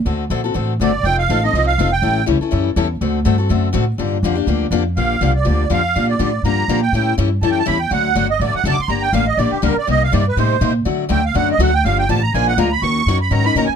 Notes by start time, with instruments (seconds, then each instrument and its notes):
0.05 upright bass D2, steel-string acoustic guitar D3 A3 C4 F#4 A4
0.30 upright bass A#1, steel-string acoustic guitar D3 A3 C4 F#4 A4
0.44 steel-string acoustic guitar C4 F#4 A4
0.54 upright bass A1, steel-string acoustic guitar D3 A3 C4 F#4 A4
0.80 upright bass G1, steel-string acoustic guitar D3 A3 C4 F#4 A4, accordion D5
1.03 upright bass F1, steel-string acoustic guitar F3 C4 D#4 A4, accordion G5
1.19 accordion F5
1.29 upright bass A1, steel-string acoustic guitar F3 C4 D#4 A4
1.43 steel-string acoustic guitar C4 D#4 A4, accordion D#5
1.53 upright bass C2, steel-string acoustic guitar F3 C4 D#4 A4
1.67 accordion F5
1.78 upright bass F1, steel-string acoustic guitar F3 C4 D#4 A4
1.92 accordion G5
2.02 upright bass A1, steel-string acoustic guitar E3 G3 C#4 E4 A4
2.26 upright bass C#2, steel-string acoustic guitar E3 G3 C#4 E4 A4
2.40 steel-string acoustic guitar C#4 E4 A4, muted upright bass stroke
2.51 upright bass F#2, steel-string acoustic guitar E3 G3 C#4 E4 A4
2.76 upright bass E2, steel-string acoustic guitar E3 G3 C#4 E4 A4
3.01 upright bass D2, steel-string acoustic guitar D3 A3 C4 F#4 A4
3.25 upright bass G2, steel-string acoustic guitar D3 A3 C4 F#4 A4
3.38 steel-string acoustic guitar C4 F#4 A4
3.49 upright bass F#2, steel-string acoustic guitar D3 A3 C4 F#4 A4
3.73 upright bass A2, steel-string acoustic guitar D3 A3 C4 F#4 A4
3.98 upright bass G2, steel-string acoustic guitar D3 F3 A#3 D4 G4
4.23 upright bass F2, steel-string acoustic guitar D3 F3 A#3 D4 G4
4.35 steel-string acoustic guitar A#3 D4 G4
4.47 upright bass D2, steel-string acoustic guitar D3 F3 A#3 D4 G4
4.71 upright bass F2, steel-string acoustic guitar D3 F3 A#3 D4 G4
4.97 upright bass A#1, steel-string acoustic guitar D3 F3 A#3 D4 G4, accordion F5
5.21 upright bass C2, steel-string acoustic guitar D3 F3 A#3 D4 G4
5.36 accordion D5
5.45 upright bass D2, steel-string acoustic guitar D3 F3 A#3 D4 G4
5.70 upright bass F2, steel-string acoustic guitar D3 F3 A#3 D4 G4, accordion F5
5.96 upright bass A#2, steel-string acoustic guitar D3 F3 A#3 D4 G4
6.09 accordion D5
6.19 upright bass A2, steel-string acoustic guitar D3 F3 A#3 D4 G4
6.43 upright bass G2, steel-string acoustic guitar D3 F3 A#3 D4 G4, accordion A#5
6.68 upright bass A#2, steel-string acoustic guitar D3 F3 A#3 D4 G4
6.82 accordion G5
6.92 upright bass A2, steel-string acoustic guitar E3 G3 C#4 E4 A4
7.18 upright bass G2, steel-string acoustic guitar E3 G3 C#4 E4 A4
7.41 upright bass F#2, steel-string acoustic guitar E3 G3 C#4 E4 A4, accordion A5
7.51 accordion G5
7.59 accordion A5
7.66 upright bass E2, steel-string acoustic guitar E3 G3 C#4 E4 A4, accordion B5
7.80 accordion G5
7.91 upright bass D2, steel-string acoustic guitar D3 F#3 A3 D4 F#4, accordion F#5
8.15 upright bass G1, steel-string acoustic guitar D3 F#3 A3 D4 F#4
8.30 accordion D#5
8.40 upright bass A1, steel-string acoustic guitar D3 F#3 A3 D4 F#4, accordion D5
8.54 accordion F#5, muted upright bass stroke
8.64 upright bass F#1, steel-string acoustic guitar D3 F#3 A3 D4 F#4, accordion A5
8.72 accordion D6
8.79 accordion C6, muted upright bass stroke
8.88 upright bass G1, steel-string acoustic guitar D3 G3 A#3 D4 G4, accordion A#5
9.02 accordion G5
9.13 upright bass A1, steel-string acoustic guitar D3 G3 A#3 D4 G4, accordion F5
9.27 accordion D#5
9.37 upright bass A#1, steel-string acoustic guitar D3 G3 A#3 D4 G4, accordion D5
9.50 accordion G4, muted upright bass stroke
9.62 upright bass D2, steel-string acoustic guitar D3 G3 A#3 D4 G4, accordion A#4
9.76 accordion D5, muted upright bass stroke
9.87 upright bass C2, steel-string acoustic guitar C3 G3 A#3 D#4 G4, accordion D#5
10.04 accordion F5
10.12 upright bass G2, steel-string acoustic guitar C3 G3 A#3 D#4 G4, accordion D5
10.28 accordion B4
10.37 upright bass A2, steel-string acoustic guitar C3 G3 A#3 D#4 G4, accordion C5
10.61 upright bass A#2, steel-string acoustic guitar C3 G3 A#3 D#4 G4
10.85 steel-string acoustic guitar D3 F#3 A3 D4 F#4, upright bass D3
11.09 upright bass D2, steel-string acoustic guitar D3 F#3 A3 D4 F#4, accordion G5
11.25 accordion F5
11.35 upright bass F#2, steel-string acoustic guitar D3 F#3 A3 D4 F#4, accordion F#5
11.52 accordion D#5
11.59 upright bass D2, steel-string acoustic guitar D3 F#3 A3 D4 F#4, accordion F#5
11.74 accordion G5
11.84 upright bass G1, steel-string acoustic guitar D3 F3 A#3 D4 G4, accordion F5
11.99 accordion G5
12.09 upright bass A1, steel-string acoustic guitar D3 F3 A#3 D4 G4, accordion A5
12.22 accordion A#5
12.33 upright bass A#1, steel-string acoustic guitar F3 G#3 D4 F4 A#4, accordion G#5
12.48 accordion F#5
12.57 upright bass D2, steel-string acoustic guitar F3 G#3 D4 F4 A#4, accordion A#5
12.72 accordion B5
12.82 upright bass D#2, steel-string acoustic guitar D#3 F#3 C#4 D#4 A#4, accordion C#6
13.06 upright bass F#2, steel-string acoustic guitar D#3 F#3 C#4 D#4 A#4
13.22 accordion B5
13.31 upright bass G#2, steel-string acoustic guitar D#3 F#3 C#4 D#4 A#4, accordion A#5
13.44 steel-string acoustic guitar C#4 D#4 A#4, accordion B5
13.55 upright bass A#2, steel-string acoustic guitar D#3 F#3 C#4 D#4 A#4, accordion A#5
13.66 accordion G#5, muted upright bass stroke